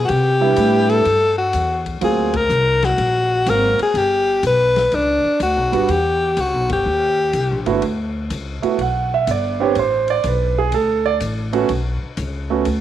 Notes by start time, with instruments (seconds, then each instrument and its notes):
0.05 alto saxophone F#4 G4, ride
0.09 upright bass C3
0.41 grand piano G3 B3 D4 E4
0.56 upright bass A2, hi-hat pedal, ride
0.89 alto saxophone A4, ride
1.05 upright bass G2, ride
1.38 alto saxophone F#4
1.53 upright bass E2, hi-hat pedal, ride
1.86 kick, ride
2.01 upright bass D2, grand piano F#3 A#3 C4 F4, alto saxophone G#4, ride
2.34 alto saxophone A#4, kick, ride
2.49 upright bass C2, hi-hat pedal
2.82 alto saxophone F#4, snare, ride
2.98 upright bass A#1, ride
3.46 upright bass G#1, grand piano F#3 A#3 C4 F#4, alto saxophone A#4, hi-hat pedal, ride
3.79 alto saxophone G#4, muted upright bass stroke, ride
3.94 upright bass G1, alto saxophone G4, ride
4.43 upright bass B1, alto saxophone B4, hi-hat pedal, ride
4.76 snare, ride
4.92 upright bass C#2, alto saxophone D4, ride
5.24 muted upright bass stroke
5.40 upright bass D2, alto saxophone F#4, hi-hat pedal, ride
5.56 upright bass B1
5.72 upright bass G1, grand piano G3 B3 D4 F#4, ride
5.89 upright bass E2, alto saxophone G4, ride
6.37 upright bass C#2, alto saxophone F#4, hi-hat pedal, ride
6.54 upright bass B1
6.70 upright bass G1, alto saxophone G4, kick, ride
6.86 upright bass D#2
7.33 upright bass C2, hi-hat pedal, ride
7.51 upright bass A#1
7.66 upright bass G1, grand piano D3 A3 B3 E4 F#4, ride
7.82 upright bass D2, ride
8.30 upright bass C#2, hi-hat pedal, ride
8.62 grand piano A3 B3 E4 F#4, muted upright bass stroke, ride
8.78 upright bass B1, grand piano F#5, ride
9.14 grand piano E5
9.27 upright bass G1, grand piano D5, hi-hat pedal, ride
9.60 grand piano B3 C4 D4 G4 C#5
9.75 upright bass A1, ride
9.79 grand piano C5
10.08 grand piano D5, ride
10.24 upright bass B1, grand piano B4, hi-hat pedal, ride
10.58 grand piano G#4
10.72 upright bass D2, grand piano A4, ride
11.06 grand piano D5
11.20 upright bass A1, hi-hat pedal, ride
11.53 grand piano A3 B3 C#4 F#4, ride
11.69 upright bass B1, ride
12.03 muted upright bass stroke
12.17 upright bass C#2, hi-hat pedal, ride
12.50 grand piano A3 B3 C#4 F#4
12.65 upright bass D2, ride